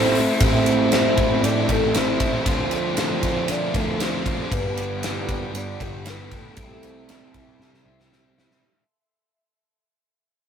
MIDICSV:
0, 0, Header, 1, 9, 480
1, 0, Start_track
1, 0, Key_signature, 0, "minor"
1, 0, Tempo, 513699
1, 377, Time_signature, 4, 2, 24, 8
1, 9793, End_track
2, 0, Start_track
2, 0, Title_t, "Ambient pad"
2, 0, Program_c, 0, 92
2, 0, Note_on_c, 0, 69, 79
2, 0, Note_on_c, 0, 72, 71
2, 0, Note_on_c, 0, 83, 85
2, 349, Note_off_c, 0, 69, 0
2, 352, Note_off_c, 0, 72, 0
2, 358, Note_off_c, 0, 83, 0
2, 392, Note_on_c, 0, 84, 79
2, 399, Note_on_c, 0, 79, 70
2, 401, Note_on_c, 0, 69, 73
2, 2285, Note_off_c, 0, 84, 0
2, 2288, Note_off_c, 0, 79, 0
2, 2289, Note_off_c, 0, 69, 0
2, 2302, Note_on_c, 0, 77, 71
2, 2304, Note_on_c, 0, 86, 76
2, 2305, Note_on_c, 0, 72, 72
2, 4200, Note_off_c, 0, 77, 0
2, 4200, Note_on_c, 0, 69, 72
2, 4202, Note_off_c, 0, 72, 0
2, 4202, Note_off_c, 0, 86, 0
2, 4211, Note_on_c, 0, 83, 83
2, 4216, Note_on_c, 0, 79, 67
2, 6116, Note_off_c, 0, 83, 0
2, 6118, Note_off_c, 0, 79, 0
2, 6160, Note_on_c, 0, 84, 78
2, 6164, Note_on_c, 0, 76, 71
2, 8013, Note_off_c, 0, 69, 0
2, 8051, Note_off_c, 0, 84, 0
2, 8053, Note_off_c, 0, 76, 0
2, 9793, End_track
3, 0, Start_track
3, 0, Title_t, "Soft synth lead"
3, 0, Program_c, 1, 80
3, 0, Note_on_c, 1, 72, 97
3, 380, Note_off_c, 1, 72, 0
3, 392, Note_on_c, 1, 72, 100
3, 1343, Note_on_c, 1, 74, 104
3, 1357, Note_off_c, 1, 72, 0
3, 1599, Note_on_c, 1, 69, 93
3, 1613, Note_off_c, 1, 74, 0
3, 1843, Note_on_c, 1, 72, 97
3, 1857, Note_off_c, 1, 69, 0
3, 2310, Note_off_c, 1, 72, 0
3, 2315, Note_on_c, 1, 72, 111
3, 3276, Note_on_c, 1, 74, 101
3, 3290, Note_off_c, 1, 72, 0
3, 3510, Note_on_c, 1, 69, 91
3, 3524, Note_off_c, 1, 74, 0
3, 3744, Note_on_c, 1, 72, 98
3, 3758, Note_off_c, 1, 69, 0
3, 4228, Note_on_c, 1, 71, 104
3, 4242, Note_off_c, 1, 72, 0
3, 5198, Note_on_c, 1, 74, 104
3, 5212, Note_off_c, 1, 71, 0
3, 5436, Note_on_c, 1, 67, 86
3, 5450, Note_off_c, 1, 74, 0
3, 5692, Note_on_c, 1, 71, 87
3, 5706, Note_off_c, 1, 67, 0
3, 5933, Note_on_c, 1, 69, 88
3, 5947, Note_off_c, 1, 71, 0
3, 7597, Note_off_c, 1, 69, 0
3, 9793, End_track
4, 0, Start_track
4, 0, Title_t, "Overdriven electric guitar"
4, 0, Program_c, 2, 29
4, 0, Note_on_c, 2, 45, 92
4, 0, Note_on_c, 2, 52, 78
4, 0, Note_on_c, 2, 60, 90
4, 0, Note_on_c, 2, 64, 73
4, 0, Note_on_c, 2, 69, 95
4, 134, Note_off_c, 2, 45, 0
4, 364, Note_off_c, 2, 52, 0
4, 368, Note_off_c, 2, 60, 0
4, 372, Note_off_c, 2, 64, 0
4, 374, Note_off_c, 2, 69, 0
4, 383, Note_on_c, 2, 45, 89
4, 390, Note_on_c, 2, 52, 100
4, 401, Note_on_c, 2, 57, 89
4, 407, Note_on_c, 2, 60, 98
4, 412, Note_on_c, 2, 64, 107
4, 602, Note_off_c, 2, 64, 0
4, 613, Note_on_c, 2, 64, 71
4, 629, Note_off_c, 2, 60, 0
4, 633, Note_on_c, 2, 60, 65
4, 641, Note_off_c, 2, 57, 0
4, 644, Note_on_c, 2, 57, 53
4, 837, Note_off_c, 2, 52, 0
4, 848, Note_on_c, 2, 52, 70
4, 856, Note_off_c, 2, 57, 0
4, 860, Note_off_c, 2, 45, 0
4, 860, Note_off_c, 2, 64, 0
4, 860, Note_on_c, 2, 57, 78
4, 864, Note_off_c, 2, 60, 0
4, 867, Note_on_c, 2, 60, 79
4, 871, Note_on_c, 2, 64, 78
4, 1075, Note_off_c, 2, 64, 0
4, 1086, Note_on_c, 2, 64, 73
4, 1097, Note_off_c, 2, 60, 0
4, 1101, Note_on_c, 2, 60, 65
4, 1110, Note_off_c, 2, 57, 0
4, 1113, Note_on_c, 2, 57, 56
4, 1321, Note_on_c, 2, 45, 91
4, 1322, Note_off_c, 2, 52, 0
4, 1333, Note_off_c, 2, 57, 0
4, 1333, Note_off_c, 2, 60, 0
4, 1334, Note_on_c, 2, 52, 94
4, 1336, Note_off_c, 2, 64, 0
4, 1337, Note_on_c, 2, 57, 86
4, 1344, Note_on_c, 2, 60, 98
4, 1347, Note_on_c, 2, 64, 105
4, 1560, Note_off_c, 2, 64, 0
4, 1571, Note_on_c, 2, 64, 66
4, 1574, Note_off_c, 2, 60, 0
4, 1585, Note_on_c, 2, 60, 60
4, 1597, Note_off_c, 2, 57, 0
4, 1601, Note_on_c, 2, 57, 54
4, 1799, Note_off_c, 2, 52, 0
4, 1809, Note_off_c, 2, 45, 0
4, 1811, Note_on_c, 2, 52, 70
4, 1825, Note_off_c, 2, 57, 0
4, 1825, Note_off_c, 2, 60, 0
4, 1829, Note_on_c, 2, 57, 79
4, 1830, Note_off_c, 2, 64, 0
4, 1836, Note_on_c, 2, 60, 78
4, 1841, Note_on_c, 2, 64, 76
4, 2033, Note_off_c, 2, 64, 0
4, 2044, Note_on_c, 2, 64, 64
4, 2048, Note_off_c, 2, 60, 0
4, 2060, Note_on_c, 2, 60, 59
4, 2069, Note_off_c, 2, 57, 0
4, 2073, Note_on_c, 2, 57, 51
4, 2275, Note_off_c, 2, 52, 0
4, 2276, Note_off_c, 2, 64, 0
4, 2279, Note_on_c, 2, 50, 95
4, 2284, Note_off_c, 2, 60, 0
4, 2287, Note_off_c, 2, 57, 0
4, 2291, Note_on_c, 2, 57, 91
4, 2298, Note_on_c, 2, 62, 98
4, 2305, Note_on_c, 2, 65, 92
4, 2507, Note_off_c, 2, 65, 0
4, 2518, Note_on_c, 2, 65, 71
4, 2535, Note_off_c, 2, 62, 0
4, 2538, Note_on_c, 2, 62, 64
4, 2547, Note_off_c, 2, 57, 0
4, 2551, Note_on_c, 2, 57, 62
4, 2762, Note_off_c, 2, 50, 0
4, 2773, Note_on_c, 2, 50, 69
4, 2780, Note_off_c, 2, 57, 0
4, 2784, Note_on_c, 2, 57, 72
4, 2785, Note_off_c, 2, 65, 0
4, 2789, Note_off_c, 2, 62, 0
4, 2793, Note_on_c, 2, 62, 85
4, 2797, Note_on_c, 2, 65, 81
4, 3002, Note_off_c, 2, 65, 0
4, 3013, Note_on_c, 2, 65, 74
4, 3028, Note_off_c, 2, 62, 0
4, 3031, Note_on_c, 2, 62, 69
4, 3042, Note_off_c, 2, 57, 0
4, 3046, Note_on_c, 2, 57, 57
4, 3240, Note_off_c, 2, 50, 0
4, 3251, Note_on_c, 2, 50, 95
4, 3261, Note_off_c, 2, 62, 0
4, 3264, Note_off_c, 2, 57, 0
4, 3267, Note_on_c, 2, 57, 97
4, 3268, Note_off_c, 2, 65, 0
4, 3272, Note_on_c, 2, 62, 99
4, 3280, Note_on_c, 2, 65, 99
4, 3482, Note_off_c, 2, 65, 0
4, 3493, Note_on_c, 2, 65, 69
4, 3505, Note_off_c, 2, 62, 0
4, 3517, Note_on_c, 2, 62, 65
4, 3521, Note_off_c, 2, 57, 0
4, 3525, Note_on_c, 2, 57, 56
4, 3724, Note_off_c, 2, 50, 0
4, 3735, Note_on_c, 2, 50, 77
4, 3744, Note_off_c, 2, 62, 0
4, 3747, Note_off_c, 2, 57, 0
4, 3750, Note_off_c, 2, 65, 0
4, 3751, Note_on_c, 2, 57, 73
4, 3755, Note_on_c, 2, 62, 87
4, 3762, Note_on_c, 2, 65, 78
4, 3975, Note_off_c, 2, 65, 0
4, 3986, Note_on_c, 2, 65, 62
4, 3992, Note_off_c, 2, 62, 0
4, 4003, Note_on_c, 2, 62, 60
4, 4009, Note_off_c, 2, 57, 0
4, 4013, Note_on_c, 2, 57, 54
4, 4202, Note_off_c, 2, 50, 0
4, 4207, Note_off_c, 2, 65, 0
4, 4216, Note_off_c, 2, 62, 0
4, 4220, Note_on_c, 2, 43, 88
4, 4229, Note_on_c, 2, 50, 92
4, 4229, Note_on_c, 2, 55, 101
4, 4236, Note_off_c, 2, 57, 0
4, 4239, Note_on_c, 2, 59, 103
4, 4240, Note_on_c, 2, 62, 100
4, 4244, Note_on_c, 2, 67, 90
4, 4461, Note_off_c, 2, 67, 0
4, 4462, Note_off_c, 2, 62, 0
4, 4464, Note_on_c, 2, 67, 68
4, 4472, Note_off_c, 2, 59, 0
4, 4473, Note_on_c, 2, 62, 61
4, 4484, Note_on_c, 2, 59, 60
4, 4489, Note_off_c, 2, 55, 0
4, 4493, Note_on_c, 2, 55, 54
4, 4686, Note_off_c, 2, 55, 0
4, 4690, Note_on_c, 2, 55, 73
4, 4695, Note_off_c, 2, 59, 0
4, 4699, Note_off_c, 2, 43, 0
4, 4699, Note_off_c, 2, 62, 0
4, 4703, Note_off_c, 2, 50, 0
4, 4706, Note_on_c, 2, 59, 71
4, 4710, Note_on_c, 2, 62, 76
4, 4716, Note_off_c, 2, 67, 0
4, 4719, Note_on_c, 2, 67, 71
4, 4935, Note_off_c, 2, 67, 0
4, 4936, Note_off_c, 2, 62, 0
4, 4939, Note_on_c, 2, 67, 74
4, 4948, Note_on_c, 2, 62, 65
4, 4949, Note_off_c, 2, 59, 0
4, 4961, Note_on_c, 2, 59, 55
4, 4964, Note_off_c, 2, 55, 0
4, 4968, Note_on_c, 2, 55, 59
4, 5179, Note_on_c, 2, 43, 89
4, 5184, Note_off_c, 2, 59, 0
4, 5188, Note_off_c, 2, 62, 0
4, 5189, Note_on_c, 2, 50, 90
4, 5191, Note_off_c, 2, 55, 0
4, 5195, Note_on_c, 2, 55, 91
4, 5195, Note_on_c, 2, 59, 94
4, 5199, Note_off_c, 2, 67, 0
4, 5199, Note_on_c, 2, 62, 97
4, 5203, Note_on_c, 2, 67, 94
4, 5423, Note_off_c, 2, 62, 0
4, 5423, Note_off_c, 2, 67, 0
4, 5427, Note_on_c, 2, 67, 70
4, 5428, Note_off_c, 2, 59, 0
4, 5434, Note_on_c, 2, 62, 67
4, 5439, Note_on_c, 2, 59, 60
4, 5447, Note_off_c, 2, 55, 0
4, 5451, Note_on_c, 2, 55, 61
4, 5656, Note_off_c, 2, 55, 0
4, 5659, Note_off_c, 2, 43, 0
4, 5660, Note_on_c, 2, 55, 75
4, 5663, Note_off_c, 2, 50, 0
4, 5663, Note_off_c, 2, 59, 0
4, 5666, Note_off_c, 2, 62, 0
4, 5674, Note_on_c, 2, 59, 72
4, 5677, Note_on_c, 2, 62, 79
4, 5688, Note_off_c, 2, 67, 0
4, 5692, Note_on_c, 2, 67, 71
4, 5893, Note_off_c, 2, 67, 0
4, 5894, Note_off_c, 2, 62, 0
4, 5897, Note_on_c, 2, 67, 69
4, 5903, Note_off_c, 2, 59, 0
4, 5905, Note_on_c, 2, 62, 59
4, 5914, Note_on_c, 2, 59, 59
4, 5918, Note_off_c, 2, 55, 0
4, 5922, Note_on_c, 2, 55, 55
4, 6127, Note_off_c, 2, 62, 0
4, 6132, Note_off_c, 2, 55, 0
4, 6132, Note_off_c, 2, 59, 0
4, 6132, Note_on_c, 2, 48, 89
4, 6135, Note_on_c, 2, 55, 88
4, 6145, Note_on_c, 2, 60, 93
4, 6154, Note_on_c, 2, 64, 94
4, 6155, Note_off_c, 2, 67, 0
4, 6158, Note_on_c, 2, 67, 92
4, 6368, Note_off_c, 2, 67, 0
4, 6379, Note_on_c, 2, 67, 63
4, 6381, Note_off_c, 2, 64, 0
4, 6392, Note_off_c, 2, 60, 0
4, 6392, Note_on_c, 2, 64, 60
4, 6403, Note_on_c, 2, 60, 52
4, 6599, Note_off_c, 2, 55, 0
4, 6609, Note_off_c, 2, 60, 0
4, 6610, Note_on_c, 2, 55, 67
4, 6615, Note_off_c, 2, 48, 0
4, 6620, Note_on_c, 2, 60, 79
4, 6622, Note_off_c, 2, 64, 0
4, 6625, Note_off_c, 2, 67, 0
4, 6633, Note_on_c, 2, 64, 73
4, 6636, Note_on_c, 2, 67, 74
4, 6836, Note_off_c, 2, 67, 0
4, 6848, Note_on_c, 2, 67, 65
4, 6859, Note_off_c, 2, 64, 0
4, 6867, Note_off_c, 2, 60, 0
4, 6871, Note_on_c, 2, 64, 70
4, 6878, Note_on_c, 2, 60, 59
4, 7094, Note_off_c, 2, 55, 0
4, 7099, Note_on_c, 2, 48, 85
4, 7102, Note_off_c, 2, 60, 0
4, 7107, Note_on_c, 2, 55, 86
4, 7109, Note_off_c, 2, 64, 0
4, 7113, Note_off_c, 2, 67, 0
4, 7114, Note_on_c, 2, 60, 85
4, 7120, Note_on_c, 2, 64, 96
4, 7124, Note_on_c, 2, 67, 89
4, 7326, Note_off_c, 2, 67, 0
4, 7337, Note_on_c, 2, 67, 67
4, 7339, Note_off_c, 2, 64, 0
4, 7347, Note_off_c, 2, 60, 0
4, 7350, Note_on_c, 2, 64, 58
4, 7358, Note_on_c, 2, 60, 56
4, 7559, Note_off_c, 2, 55, 0
4, 7571, Note_on_c, 2, 55, 73
4, 7574, Note_off_c, 2, 60, 0
4, 7579, Note_off_c, 2, 48, 0
4, 7583, Note_off_c, 2, 64, 0
4, 7586, Note_on_c, 2, 60, 69
4, 7589, Note_off_c, 2, 67, 0
4, 7595, Note_on_c, 2, 64, 69
4, 7601, Note_on_c, 2, 67, 76
4, 7808, Note_off_c, 2, 67, 0
4, 7820, Note_on_c, 2, 67, 65
4, 7823, Note_off_c, 2, 64, 0
4, 7831, Note_off_c, 2, 60, 0
4, 7835, Note_on_c, 2, 64, 55
4, 7842, Note_on_c, 2, 60, 48
4, 8041, Note_off_c, 2, 55, 0
4, 8045, Note_off_c, 2, 67, 0
4, 8053, Note_off_c, 2, 64, 0
4, 8056, Note_off_c, 2, 60, 0
4, 9793, End_track
5, 0, Start_track
5, 0, Title_t, "Clean electric guitar"
5, 0, Program_c, 3, 27
5, 0, Note_on_c, 3, 57, 67
5, 0, Note_on_c, 3, 60, 68
5, 0, Note_on_c, 3, 64, 75
5, 0, Note_on_c, 3, 69, 83
5, 133, Note_off_c, 3, 60, 0
5, 144, Note_on_c, 3, 60, 68
5, 374, Note_off_c, 3, 57, 0
5, 378, Note_off_c, 3, 64, 0
5, 378, Note_on_c, 3, 55, 77
5, 381, Note_off_c, 3, 60, 0
5, 406, Note_off_c, 3, 69, 0
5, 859, Note_off_c, 3, 55, 0
5, 870, Note_on_c, 3, 55, 68
5, 1571, Note_off_c, 3, 55, 0
5, 1582, Note_on_c, 3, 55, 68
5, 2298, Note_off_c, 3, 55, 0
5, 2302, Note_on_c, 3, 53, 71
5, 2540, Note_on_c, 3, 60, 66
5, 2756, Note_off_c, 3, 53, 0
5, 2767, Note_on_c, 3, 53, 68
5, 3251, Note_off_c, 3, 60, 0
5, 3263, Note_on_c, 3, 60, 68
5, 3489, Note_off_c, 3, 53, 0
5, 3500, Note_on_c, 3, 53, 67
5, 3720, Note_off_c, 3, 60, 0
5, 3731, Note_on_c, 3, 60, 68
5, 4215, Note_off_c, 3, 53, 0
5, 4215, Note_off_c, 3, 60, 0
5, 7344, Note_on_c, 3, 55, 60
5, 8062, Note_off_c, 3, 55, 0
5, 9793, End_track
6, 0, Start_track
6, 0, Title_t, "Overdriven electric guitar"
6, 0, Program_c, 4, 29
6, 0, Note_on_c, 4, 57, 81
6, 149, Note_on_c, 4, 64, 74
6, 162, Note_on_c, 4, 60, 67
6, 169, Note_off_c, 4, 57, 0
6, 181, Note_on_c, 4, 57, 58
6, 369, Note_off_c, 4, 64, 0
6, 375, Note_off_c, 4, 60, 0
6, 385, Note_off_c, 4, 57, 0
6, 2305, Note_on_c, 4, 53, 71
6, 4221, Note_off_c, 4, 53, 0
6, 9793, End_track
7, 0, Start_track
7, 0, Title_t, "Overdriven electric guitar"
7, 0, Program_c, 5, 29
7, 0, Note_on_c, 5, 45, 71
7, 0, Note_on_c, 5, 52, 75
7, 0, Note_on_c, 5, 57, 73
7, 0, Note_on_c, 5, 60, 86
7, 0, Note_on_c, 5, 64, 87
7, 359, Note_off_c, 5, 64, 0
7, 362, Note_off_c, 5, 60, 0
7, 365, Note_off_c, 5, 57, 0
7, 368, Note_off_c, 5, 45, 0
7, 370, Note_off_c, 5, 52, 0
7, 1110, Note_on_c, 5, 52, 70
7, 1115, Note_on_c, 5, 45, 68
7, 1802, Note_off_c, 5, 45, 0
7, 1809, Note_off_c, 5, 52, 0
7, 1814, Note_on_c, 5, 45, 72
7, 2281, Note_off_c, 5, 45, 0
7, 3033, Note_on_c, 5, 50, 63
7, 3708, Note_off_c, 5, 50, 0
7, 9793, End_track
8, 0, Start_track
8, 0, Title_t, "Picked electric bass"
8, 0, Program_c, 6, 34
8, 0, Note_on_c, 6, 33, 88
8, 239, Note_off_c, 6, 33, 0
8, 383, Note_on_c, 6, 33, 86
8, 1150, Note_off_c, 6, 33, 0
8, 1336, Note_on_c, 6, 45, 94
8, 1529, Note_off_c, 6, 45, 0
8, 1579, Note_on_c, 6, 33, 86
8, 2156, Note_off_c, 6, 33, 0
8, 2297, Note_on_c, 6, 38, 89
8, 3068, Note_off_c, 6, 38, 0
8, 3259, Note_on_c, 6, 50, 85
8, 3451, Note_off_c, 6, 50, 0
8, 3502, Note_on_c, 6, 38, 83
8, 4078, Note_off_c, 6, 38, 0
8, 4220, Note_on_c, 6, 31, 84
8, 4990, Note_off_c, 6, 31, 0
8, 5175, Note_on_c, 6, 43, 87
8, 5369, Note_off_c, 6, 43, 0
8, 5420, Note_on_c, 6, 31, 83
8, 5997, Note_off_c, 6, 31, 0
8, 6138, Note_on_c, 6, 36, 90
8, 6909, Note_off_c, 6, 36, 0
8, 7098, Note_on_c, 6, 48, 89
8, 7291, Note_off_c, 6, 48, 0
8, 7338, Note_on_c, 6, 36, 88
8, 7917, Note_off_c, 6, 36, 0
8, 9793, End_track
9, 0, Start_track
9, 0, Title_t, "Drums"
9, 140, Note_on_c, 9, 46, 65
9, 234, Note_off_c, 9, 46, 0
9, 377, Note_on_c, 9, 51, 83
9, 380, Note_on_c, 9, 36, 103
9, 471, Note_off_c, 9, 51, 0
9, 474, Note_off_c, 9, 36, 0
9, 618, Note_on_c, 9, 51, 60
9, 712, Note_off_c, 9, 51, 0
9, 857, Note_on_c, 9, 51, 80
9, 868, Note_on_c, 9, 38, 106
9, 951, Note_off_c, 9, 51, 0
9, 962, Note_off_c, 9, 38, 0
9, 1097, Note_on_c, 9, 51, 63
9, 1099, Note_on_c, 9, 36, 84
9, 1191, Note_off_c, 9, 51, 0
9, 1193, Note_off_c, 9, 36, 0
9, 1345, Note_on_c, 9, 51, 82
9, 1438, Note_off_c, 9, 51, 0
9, 1578, Note_on_c, 9, 51, 65
9, 1579, Note_on_c, 9, 36, 74
9, 1671, Note_off_c, 9, 51, 0
9, 1672, Note_off_c, 9, 36, 0
9, 1817, Note_on_c, 9, 51, 89
9, 1828, Note_on_c, 9, 38, 109
9, 1910, Note_off_c, 9, 51, 0
9, 1921, Note_off_c, 9, 38, 0
9, 2056, Note_on_c, 9, 51, 65
9, 2058, Note_on_c, 9, 36, 81
9, 2149, Note_off_c, 9, 51, 0
9, 2151, Note_off_c, 9, 36, 0
9, 2298, Note_on_c, 9, 36, 104
9, 2298, Note_on_c, 9, 51, 86
9, 2392, Note_off_c, 9, 36, 0
9, 2392, Note_off_c, 9, 51, 0
9, 2533, Note_on_c, 9, 51, 64
9, 2626, Note_off_c, 9, 51, 0
9, 2773, Note_on_c, 9, 51, 92
9, 2784, Note_on_c, 9, 38, 105
9, 2866, Note_off_c, 9, 51, 0
9, 2878, Note_off_c, 9, 38, 0
9, 3016, Note_on_c, 9, 51, 72
9, 3017, Note_on_c, 9, 36, 77
9, 3109, Note_off_c, 9, 51, 0
9, 3110, Note_off_c, 9, 36, 0
9, 3252, Note_on_c, 9, 51, 93
9, 3346, Note_off_c, 9, 51, 0
9, 3498, Note_on_c, 9, 36, 82
9, 3498, Note_on_c, 9, 51, 62
9, 3592, Note_off_c, 9, 36, 0
9, 3592, Note_off_c, 9, 51, 0
9, 3740, Note_on_c, 9, 51, 91
9, 3751, Note_on_c, 9, 38, 109
9, 3833, Note_off_c, 9, 51, 0
9, 3844, Note_off_c, 9, 38, 0
9, 3979, Note_on_c, 9, 36, 84
9, 3980, Note_on_c, 9, 51, 66
9, 4072, Note_off_c, 9, 36, 0
9, 4074, Note_off_c, 9, 51, 0
9, 4220, Note_on_c, 9, 36, 98
9, 4223, Note_on_c, 9, 51, 79
9, 4313, Note_off_c, 9, 36, 0
9, 4317, Note_off_c, 9, 51, 0
9, 4461, Note_on_c, 9, 51, 66
9, 4555, Note_off_c, 9, 51, 0
9, 4700, Note_on_c, 9, 51, 83
9, 4711, Note_on_c, 9, 38, 103
9, 4793, Note_off_c, 9, 51, 0
9, 4805, Note_off_c, 9, 38, 0
9, 4940, Note_on_c, 9, 36, 82
9, 4941, Note_on_c, 9, 51, 62
9, 5033, Note_off_c, 9, 36, 0
9, 5034, Note_off_c, 9, 51, 0
9, 5183, Note_on_c, 9, 51, 83
9, 5277, Note_off_c, 9, 51, 0
9, 5422, Note_on_c, 9, 36, 76
9, 5426, Note_on_c, 9, 51, 58
9, 5515, Note_off_c, 9, 36, 0
9, 5520, Note_off_c, 9, 51, 0
9, 5659, Note_on_c, 9, 51, 81
9, 5670, Note_on_c, 9, 38, 99
9, 5752, Note_off_c, 9, 51, 0
9, 5763, Note_off_c, 9, 38, 0
9, 5900, Note_on_c, 9, 51, 61
9, 5902, Note_on_c, 9, 36, 80
9, 5994, Note_off_c, 9, 51, 0
9, 5995, Note_off_c, 9, 36, 0
9, 6135, Note_on_c, 9, 51, 82
9, 6141, Note_on_c, 9, 36, 104
9, 6229, Note_off_c, 9, 51, 0
9, 6234, Note_off_c, 9, 36, 0
9, 6381, Note_on_c, 9, 51, 63
9, 6475, Note_off_c, 9, 51, 0
9, 6622, Note_on_c, 9, 51, 87
9, 6633, Note_on_c, 9, 38, 97
9, 6716, Note_off_c, 9, 51, 0
9, 6727, Note_off_c, 9, 38, 0
9, 6860, Note_on_c, 9, 51, 65
9, 6862, Note_on_c, 9, 36, 76
9, 6954, Note_off_c, 9, 51, 0
9, 6955, Note_off_c, 9, 36, 0
9, 7110, Note_on_c, 9, 38, 58
9, 7204, Note_off_c, 9, 38, 0
9, 7234, Note_on_c, 9, 38, 49
9, 7327, Note_off_c, 9, 38, 0
9, 7473, Note_on_c, 9, 38, 62
9, 7567, Note_off_c, 9, 38, 0
9, 7592, Note_on_c, 9, 38, 78
9, 7685, Note_off_c, 9, 38, 0
9, 7835, Note_on_c, 9, 38, 89
9, 7928, Note_off_c, 9, 38, 0
9, 7953, Note_on_c, 9, 38, 72
9, 8046, Note_off_c, 9, 38, 0
9, 9793, End_track
0, 0, End_of_file